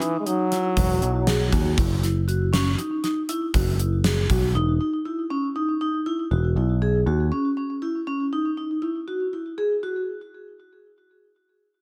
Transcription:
0.00 0.16 E3 medium
0.00 0.15 D#4 medium
0.00 closed hi-hat medium
0.20 0.28 G#3 medium
0.26 1.78 F#3 loud
0.26 0.40 D#4 medium
0.26 closed hi-hat medium
0.52 0.65 E4 medium
0.52 snare soft
0.52 closed hi-hat medium
0.77 1.00 E1 medium
0.77 0.91 F#4 medium
0.77 kick medium
0.77 closed hi-hat medium
1.02 1.49 B1 medium
1.02 1.16 E4 medium
1.02 closed hi-hat medium
1.27 1.41 G#4 medium
1.27 snare medium
1.27 closed hi-hat medium
1.52 1.76 D#2 medium
1.52 1.66 F#4 medium
1.52 kick medium
1.52 closed hi-hat medium
1.78 2.75 F#1 medium
1.78 1.91 E4 medium
1.78 kick loud
1.78 closed hi-hat medium
2.03 2.17 E4 medium
2.03 snare soft
2.03 closed hi-hat medium
2.28 2.42 F#4 medium
2.28 closed hi-hat medium
2.53 2.67 C#4 medium
2.53 snare medium
2.53 closed hi-hat medium
2.78 2.92 D#4 medium
2.78 closed hi-hat soft
3.04 3.17 D#4 medium
3.04 snare soft
3.04 closed hi-hat medium
3.29 3.43 E4 medium
3.29 closed hi-hat medium
3.54 4.26 F#1 medium
3.54 3.68 F#4 medium
3.54 kick medium
3.54 closed hi-hat medium
3.79 3.93 E4 medium
3.79 closed hi-hat medium
4.04 4.18 G#4 medium
4.04 snare medium
4.04 closed hi-hat medium
4.30 4.53 B1 medium
4.30 4.44 F#4 medium
4.30 kick medium
4.30 closed hi-hat medium
4.55 4.78 E1 loud
4.55 4.69 D#4 medium
4.81 4.94 D#4 medium
5.05 5.19 E4 medium
5.30 5.44 C#4 medium
5.56 5.69 D#4 medium
5.81 5.95 D#4 medium
6.06 6.20 E4 medium
6.31 6.55 E1 medium
6.31 6.45 F#4 medium
6.56 7.03 B1 medium
6.56 6.70 E4 medium
6.82 6.95 G#4 medium
7.06 7.30 D#2 medium
7.06 7.20 F#4 medium
7.32 7.45 C#4 medium
7.57 7.71 C#4 medium
7.82 7.96 E4 medium
8.07 8.21 C#4 medium
8.33 8.46 D#4 medium
8.57 8.71 D#4 medium
8.82 8.96 E4 medium
9.08 9.21 F#4 medium
9.33 9.47 E4 medium
9.58 9.72 G#4 medium
9.83 9.97 F#4 medium

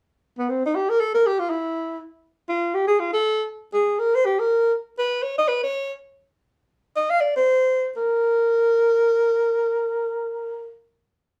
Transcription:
0.38 0.51 B3 medium
0.50 0.63 C4 medium
0.65 0.77 D#4 medium
0.75 0.91 G4 medium
0.89 1.02 A#4 medium
1.00 1.14 A4 medium
1.14 1.28 A#4 medium
1.26 1.41 G4 medium
1.39 1.51 F4 medium
1.50 1.98 E4 medium
2.49 2.76 F4 medium
2.75 2.87 G4 medium
2.88 3.01 G#4 medium
2.99 3.13 F4 medium
3.13 3.45 A4 loud
3.74 4.01 G#4 medium
3.99 4.16 A#4 medium
4.15 4.27 C5 medium
4.25 4.41 G4 medium
4.40 4.73 A#4 medium
4.99 5.24 B4 medium
5.23 5.37 C#5 medium
5.38 5.49 D#5 loud
5.48 5.62 B4 medium
5.63 5.95 C#5 medium
6.96 7.12 D#5 medium
7.10 7.22 F5 loud
7.21 7.36 D5 medium
7.36 7.88 C5 medium
7.97 10.74 A#4 medium

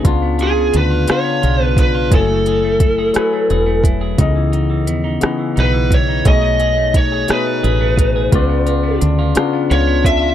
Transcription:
0.00 0.75 C#3 medium
0.00 0.12 A3 medium
0.00 0.11 D#4 medium
0.04 0.70 C#2 medium
0.04 1.06 C#3 medium
0.04 0.75 B3 medium
0.04 0.76 D4 medium
0.04 0.37 F4 medium
0.04 0.77 F4 loud
0.04 kick loud
0.04 closed hi-hat medium
0.22 0.56 B3 medium
0.39 0.89 F4 medium
0.39 closed hi-hat soft
0.43 0.73 G#4 medium
0.57 1.23 B3 medium
0.73 1.05 D2 medium
0.73 1.76 D4 medium
0.73 closed hi-hat medium
0.77 1.08 B4 medium
0.91 1.07 F4 medium
1.07 1.78 C#3 medium
1.07 2.18 C#3 medium
1.07 1.79 B3 medium
1.07 1.79 D4 medium
1.07 1.41 F4 medium
1.07 1.80 F4 medium
1.07 muted fingered electric bass stroke soft
1.07 cross-stick loud
1.07 closed hi-hat medium
1.11 1.63 C#5 medium
1.25 1.58 B3 medium
1.42 2.13 B1 medium
1.42 1.93 F4 medium
1.42 closed hi-hat soft
1.59 2.18 B3 medium
1.63 1.80 B4 medium
1.77 2.18 D4 medium
1.77 2.11 B4 medium
1.77 kick medium
1.77 closed hi-hat medium
1.95 2.12 F4 medium
2.10 3.11 F#1 medium
2.10 2.82 F#3 medium
2.10 3.14 F#3 medium
2.10 2.83 A3 medium
2.10 2.82 E4 medium
2.10 2.46 G#4 medium
2.10 2.83 G#5 medium
2.10 kick loud
2.10 closed hi-hat medium
2.14 3.81 A4 medium
2.30 2.63 A3 medium
2.46 2.98 G#4 medium
2.46 closed hi-hat soft
2.64 3.32 A3 medium
2.80 3.84 E4 medium
2.80 kick medium
2.80 closed hi-hat medium
2.98 3.16 G#4 medium
3.13 3.85 F#3 medium
3.13 4.26 F#3 medium
3.13 3.86 E4 medium
3.13 3.50 G#4 medium
3.13 3.87 B4 medium
3.13 3.86 G#5 medium
3.13 muted fingered electric bass stroke soft
3.13 cross-stick loud
3.13 closed hi-hat medium
3.33 3.65 A3 medium
3.50 4.15 E1 medium
3.50 4.01 G#4 medium
3.50 closed hi-hat soft
3.66 4.25 A3 medium
3.84 4.19 E4 medium
3.84 kick medium
3.84 closed hi-hat medium
4.01 6.26 G#4 medium
4.18 4.88 C#2 medium
4.18 4.89 C#3 medium
4.18 5.20 C#3 medium
4.18 4.90 E3 medium
4.18 4.89 B3 medium
4.18 4.52 D#4 medium
4.18 4.90 D#5 medium
4.18 kick loud
4.18 closed hi-hat medium
4.36 4.68 E3 medium
4.52 5.04 D#4 medium
4.52 closed hi-hat soft
4.70 5.37 E3 medium
4.87 5.19 D#2 medium
4.87 5.91 B3 medium
4.87 closed hi-hat medium
5.04 5.21 D#4 medium
5.20 5.92 C#3 medium
5.20 6.25 C#3 medium
5.20 5.93 E3 medium
5.20 5.92 B3 medium
5.20 5.56 D#4 medium
5.20 5.94 B4 medium
5.20 muted fingered electric bass stroke soft
5.20 cross-stick loud
5.20 closed hi-hat medium
5.38 5.72 E3 medium
5.56 6.22 B1 medium
5.56 6.08 D#4 medium
5.56 closed hi-hat soft
5.60 5.94 B4 medium
5.73 6.32 E3 medium
5.91 6.42 B3 medium
5.91 6.27 C#5 medium
5.91 kick medium
5.91 closed hi-hat medium
6.08 6.45 D#4 medium
6.24 7.25 B1 medium
6.24 6.95 B2 medium
6.24 7.28 B2 medium
6.24 6.96 A3 medium
6.24 6.96 D#4 medium
6.24 6.60 G#4 medium
6.24 6.97 G#4 medium
6.24 6.97 C#5 medium
6.24 6.96 D#5 loud
6.24 kick loud
6.24 closed hi-hat medium
6.42 6.77 A3 medium
6.60 7.12 G#4 medium
6.60 closed hi-hat soft
6.78 7.45 A3 medium
6.94 7.97 D#4 medium
6.94 7.31 C#5 medium
6.94 kick medium
6.94 closed hi-hat medium
7.12 7.29 G#4 medium
7.27 7.99 B2 medium
7.27 8.32 B2 medium
7.27 7.99 A3 medium
7.27 8.00 D#4 medium
7.27 7.63 G#4 medium
7.27 8.00 G#4 medium
7.27 8.01 B4 medium
7.27 8.99 B4 medium
7.27 muted fingered electric bass stroke soft
7.27 cross-stick loud
7.27 closed hi-hat medium
7.46 7.80 A3 medium
7.63 8.29 A1 loud
7.63 8.15 G#4 medium
7.63 closed hi-hat soft
7.81 8.39 A3 medium
7.98 8.40 D#4 medium
7.98 kick medium
7.98 closed hi-hat medium
8.16 8.33 G#4 medium
8.32 8.98 C#2 loud
8.32 9.03 C#3 medium
8.32 9.35 C#3 medium
8.32 9.03 B3 medium
8.32 8.65 F4 medium
8.32 9.04 F4 medium
8.32 9.04 D5 loud
8.32 kick loud
8.32 closed hi-hat medium
8.49 8.82 B3 medium
8.66 9.17 F4 medium
8.66 closed hi-hat soft
8.83 9.52 B3 medium
9.01 9.33 D2 medium
9.01 10.04 D4 medium
9.01 closed hi-hat medium
9.19 9.35 F4 medium
9.35 10.06 C#3 medium
9.35 10.35 C#3 medium
9.35 10.07 B3 medium
9.35 10.08 D4 medium
9.35 9.69 F4 medium
9.35 10.07 F4 medium
9.35 muted fingered electric bass stroke soft
9.35 cross-stick loud
9.35 closed hi-hat medium
9.53 9.86 B3 medium
9.70 10.35 C#2 medium
9.70 10.21 F4 medium
9.70 10.03 C#5 medium
9.70 closed hi-hat soft
9.87 10.35 B3 medium
10.04 10.35 D4 medium
10.04 10.35 E5 medium
10.04 kick medium
10.04 closed hi-hat medium
10.22 10.35 F4 medium

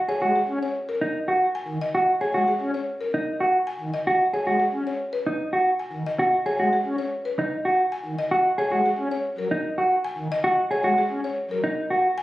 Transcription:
0.08 0.21 G#4 medium
0.08 0.26 C#5 medium
0.22 0.32 G#3 medium
0.22 0.39 F#4 medium
0.36 0.53 G#4 soft
0.48 0.58 C#4 medium
0.63 0.79 C#5 medium
0.89 1.06 A#4 medium
1.01 1.19 D#4 medium
1.28 1.45 F#4 medium
1.55 1.72 G#5 medium
1.68 1.78 D#3 medium
1.81 1.99 D#5 medium
1.95 2.12 F#4 medium
2.21 2.34 G#4 soft
2.21 2.38 C#5 medium
2.34 2.44 G#3 medium
2.34 2.52 F#4 medium
2.48 2.65 G#4 soft
2.61 2.71 C#4 medium
2.74 2.91 C#5 medium
3.01 3.18 A#4 soft
3.14 3.31 D#4 medium
3.40 3.58 F#4 soft
3.67 3.84 G#5 medium
3.81 3.90 D#3 medium
3.94 4.11 D#5 medium
4.07 4.24 F#4 medium
4.33 4.46 G#4 soft
4.33 4.51 C#5 soft
4.46 4.57 G#3 medium
4.46 4.64 F#4 medium
4.60 4.77 G#4 soft
4.73 4.83 C#4 soft
4.87 5.04 C#5 medium
5.13 5.30 B4 medium
5.27 5.44 D#4 medium
5.53 5.70 F#4 soft
5.79 5.97 G#5 medium
5.93 6.03 D#3 soft
6.06 6.23 D#5 medium
6.19 6.37 F#4 medium
6.46 6.59 G#4 medium
6.46 6.63 C#5 medium
6.60 6.69 G#3 medium
6.60 6.77 F#4 medium
6.73 6.90 G#4 soft
6.86 6.96 C#4 medium
6.98 7.16 C#5 medium
7.25 7.43 B4 medium
7.39 7.56 D#4 medium
7.65 7.83 F#4 medium
7.92 8.09 G#5 medium
8.05 8.15 D#3 medium
8.19 8.36 D#5 medium
8.31 8.49 F#4 medium
8.58 8.71 G#4 medium
8.58 8.76 C#5 medium
8.71 8.81 G#3 medium
8.71 8.89 F#4 medium
8.86 9.02 G#4 medium
8.98 9.08 C#4 medium
9.11 9.29 C#5 medium
9.38 9.48 F#3 soft
9.38 9.55 A#4 soft
9.51 9.68 D#4 medium
9.78 9.95 F#4 medium
10.05 10.22 G#5 medium
10.18 10.28 D#3 medium
10.32 10.48 D#5 medium
10.44 10.61 F#4 medium
10.71 10.84 G#4 medium
10.71 10.88 C#5 medium
10.84 10.94 G#3 medium
10.84 11.01 F#4 medium
10.98 11.15 G#4 medium
11.10 11.20 C#4 medium
11.24 11.41 C#5 medium
11.50 11.60 F#3 medium
11.50 11.68 A#4 medium
11.64 11.81 D#4 medium
11.90 12.08 F#4 medium
12.18 12.23 G#5 medium

